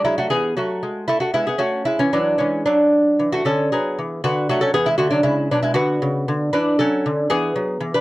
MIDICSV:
0, 0, Header, 1, 2, 480
1, 0, Start_track
1, 0, Tempo, 524017
1, 1005, Time_signature, 3, 2, 24, 8
1, 3405, Tempo, 512383
1, 7424, End_track
2, 0, Start_track
2, 0, Title_t, "Lute"
2, 0, Program_c, 0, 24
2, 42, Note_on_c, 0, 64, 91
2, 44, Note_on_c, 0, 54, 68
2, 54, Note_on_c, 0, 56, 67
2, 160, Note_off_c, 0, 64, 0
2, 162, Note_off_c, 0, 56, 0
2, 163, Note_on_c, 0, 66, 88
2, 172, Note_on_c, 0, 57, 70
2, 272, Note_off_c, 0, 66, 0
2, 274, Note_off_c, 0, 54, 0
2, 276, Note_on_c, 0, 68, 102
2, 281, Note_off_c, 0, 57, 0
2, 281, Note_on_c, 0, 52, 71
2, 288, Note_on_c, 0, 59, 73
2, 510, Note_off_c, 0, 59, 0
2, 511, Note_off_c, 0, 52, 0
2, 511, Note_off_c, 0, 68, 0
2, 518, Note_on_c, 0, 54, 70
2, 523, Note_on_c, 0, 66, 74
2, 531, Note_on_c, 0, 57, 59
2, 750, Note_off_c, 0, 54, 0
2, 758, Note_on_c, 0, 56, 53
2, 974, Note_off_c, 0, 57, 0
2, 983, Note_off_c, 0, 66, 0
2, 986, Note_on_c, 0, 64, 100
2, 989, Note_off_c, 0, 56, 0
2, 999, Note_on_c, 0, 57, 78
2, 1096, Note_off_c, 0, 64, 0
2, 1100, Note_on_c, 0, 66, 82
2, 1101, Note_off_c, 0, 57, 0
2, 1112, Note_on_c, 0, 57, 57
2, 1220, Note_off_c, 0, 57, 0
2, 1223, Note_off_c, 0, 66, 0
2, 1224, Note_on_c, 0, 59, 67
2, 1227, Note_on_c, 0, 64, 94
2, 1235, Note_on_c, 0, 56, 72
2, 1344, Note_on_c, 0, 68, 84
2, 1347, Note_off_c, 0, 56, 0
2, 1348, Note_off_c, 0, 59, 0
2, 1351, Note_off_c, 0, 64, 0
2, 1359, Note_on_c, 0, 59, 65
2, 1447, Note_off_c, 0, 59, 0
2, 1450, Note_on_c, 0, 61, 68
2, 1454, Note_on_c, 0, 66, 89
2, 1461, Note_on_c, 0, 57, 69
2, 1470, Note_off_c, 0, 68, 0
2, 1691, Note_off_c, 0, 57, 0
2, 1693, Note_off_c, 0, 66, 0
2, 1697, Note_on_c, 0, 64, 97
2, 1713, Note_on_c, 0, 56, 67
2, 1807, Note_off_c, 0, 61, 0
2, 1824, Note_on_c, 0, 61, 91
2, 1827, Note_off_c, 0, 56, 0
2, 1828, Note_off_c, 0, 64, 0
2, 1831, Note_on_c, 0, 52, 68
2, 1939, Note_off_c, 0, 52, 0
2, 1950, Note_on_c, 0, 52, 82
2, 1952, Note_off_c, 0, 61, 0
2, 1953, Note_on_c, 0, 62, 84
2, 1961, Note_on_c, 0, 54, 69
2, 2183, Note_off_c, 0, 54, 0
2, 2183, Note_on_c, 0, 61, 72
2, 2184, Note_off_c, 0, 52, 0
2, 2186, Note_on_c, 0, 56, 58
2, 2187, Note_off_c, 0, 62, 0
2, 2201, Note_on_c, 0, 52, 62
2, 2423, Note_off_c, 0, 56, 0
2, 2424, Note_off_c, 0, 61, 0
2, 2426, Note_off_c, 0, 52, 0
2, 2434, Note_on_c, 0, 62, 98
2, 2444, Note_on_c, 0, 54, 76
2, 2926, Note_on_c, 0, 52, 73
2, 3010, Note_off_c, 0, 54, 0
2, 3017, Note_off_c, 0, 62, 0
2, 3045, Note_on_c, 0, 66, 101
2, 3054, Note_on_c, 0, 57, 72
2, 3154, Note_off_c, 0, 52, 0
2, 3160, Note_on_c, 0, 50, 75
2, 3161, Note_off_c, 0, 57, 0
2, 3165, Note_off_c, 0, 66, 0
2, 3166, Note_on_c, 0, 69, 94
2, 3169, Note_on_c, 0, 61, 73
2, 3389, Note_off_c, 0, 61, 0
2, 3390, Note_off_c, 0, 50, 0
2, 3393, Note_off_c, 0, 69, 0
2, 3408, Note_on_c, 0, 68, 83
2, 3414, Note_on_c, 0, 54, 75
2, 3423, Note_on_c, 0, 59, 68
2, 3640, Note_off_c, 0, 54, 0
2, 3657, Note_on_c, 0, 52, 56
2, 3865, Note_off_c, 0, 59, 0
2, 3871, Note_off_c, 0, 68, 0
2, 3881, Note_off_c, 0, 52, 0
2, 3894, Note_on_c, 0, 50, 87
2, 3894, Note_on_c, 0, 66, 108
2, 3902, Note_on_c, 0, 59, 75
2, 4121, Note_off_c, 0, 50, 0
2, 4121, Note_off_c, 0, 59, 0
2, 4122, Note_off_c, 0, 66, 0
2, 4133, Note_on_c, 0, 54, 71
2, 4133, Note_on_c, 0, 66, 108
2, 4148, Note_on_c, 0, 57, 79
2, 4241, Note_on_c, 0, 69, 97
2, 4250, Note_off_c, 0, 57, 0
2, 4252, Note_off_c, 0, 66, 0
2, 4254, Note_on_c, 0, 61, 77
2, 4359, Note_off_c, 0, 69, 0
2, 4361, Note_off_c, 0, 61, 0
2, 4361, Note_on_c, 0, 52, 79
2, 4362, Note_off_c, 0, 54, 0
2, 4362, Note_on_c, 0, 68, 109
2, 4364, Note_on_c, 0, 59, 90
2, 4475, Note_on_c, 0, 64, 100
2, 4480, Note_off_c, 0, 59, 0
2, 4486, Note_off_c, 0, 68, 0
2, 4490, Note_on_c, 0, 56, 68
2, 4582, Note_off_c, 0, 64, 0
2, 4586, Note_on_c, 0, 66, 104
2, 4589, Note_off_c, 0, 52, 0
2, 4592, Note_on_c, 0, 50, 83
2, 4596, Note_on_c, 0, 57, 77
2, 4602, Note_off_c, 0, 56, 0
2, 4701, Note_off_c, 0, 66, 0
2, 4705, Note_on_c, 0, 62, 94
2, 4712, Note_off_c, 0, 57, 0
2, 4719, Note_on_c, 0, 54, 67
2, 4820, Note_off_c, 0, 50, 0
2, 4820, Note_off_c, 0, 62, 0
2, 4823, Note_on_c, 0, 49, 80
2, 4824, Note_on_c, 0, 64, 90
2, 4828, Note_off_c, 0, 54, 0
2, 4832, Note_on_c, 0, 56, 74
2, 5062, Note_off_c, 0, 56, 0
2, 5063, Note_off_c, 0, 49, 0
2, 5064, Note_off_c, 0, 64, 0
2, 5088, Note_on_c, 0, 47, 77
2, 5088, Note_on_c, 0, 62, 86
2, 5094, Note_on_c, 0, 54, 62
2, 5190, Note_off_c, 0, 62, 0
2, 5193, Note_on_c, 0, 64, 86
2, 5200, Note_off_c, 0, 54, 0
2, 5204, Note_on_c, 0, 56, 70
2, 5297, Note_off_c, 0, 64, 0
2, 5300, Note_on_c, 0, 66, 108
2, 5305, Note_on_c, 0, 50, 91
2, 5314, Note_on_c, 0, 59, 83
2, 5317, Note_off_c, 0, 47, 0
2, 5318, Note_off_c, 0, 56, 0
2, 5547, Note_off_c, 0, 50, 0
2, 5561, Note_on_c, 0, 49, 83
2, 5795, Note_off_c, 0, 49, 0
2, 5808, Note_on_c, 0, 50, 81
2, 6008, Note_off_c, 0, 59, 0
2, 6009, Note_off_c, 0, 66, 0
2, 6035, Note_off_c, 0, 50, 0
2, 6039, Note_on_c, 0, 52, 71
2, 6039, Note_on_c, 0, 71, 103
2, 6049, Note_on_c, 0, 62, 82
2, 6273, Note_off_c, 0, 62, 0
2, 6274, Note_off_c, 0, 52, 0
2, 6275, Note_off_c, 0, 71, 0
2, 6282, Note_on_c, 0, 69, 103
2, 6290, Note_on_c, 0, 54, 80
2, 6296, Note_on_c, 0, 61, 85
2, 6519, Note_off_c, 0, 54, 0
2, 6535, Note_on_c, 0, 50, 75
2, 6738, Note_off_c, 0, 61, 0
2, 6746, Note_off_c, 0, 69, 0
2, 6759, Note_on_c, 0, 68, 117
2, 6760, Note_off_c, 0, 50, 0
2, 6764, Note_on_c, 0, 52, 82
2, 6768, Note_on_c, 0, 59, 92
2, 6994, Note_off_c, 0, 52, 0
2, 7002, Note_on_c, 0, 54, 79
2, 7231, Note_off_c, 0, 54, 0
2, 7234, Note_on_c, 0, 52, 79
2, 7327, Note_off_c, 0, 59, 0
2, 7336, Note_off_c, 0, 68, 0
2, 7364, Note_on_c, 0, 71, 102
2, 7372, Note_on_c, 0, 62, 67
2, 7424, Note_off_c, 0, 52, 0
2, 7424, Note_off_c, 0, 62, 0
2, 7424, Note_off_c, 0, 71, 0
2, 7424, End_track
0, 0, End_of_file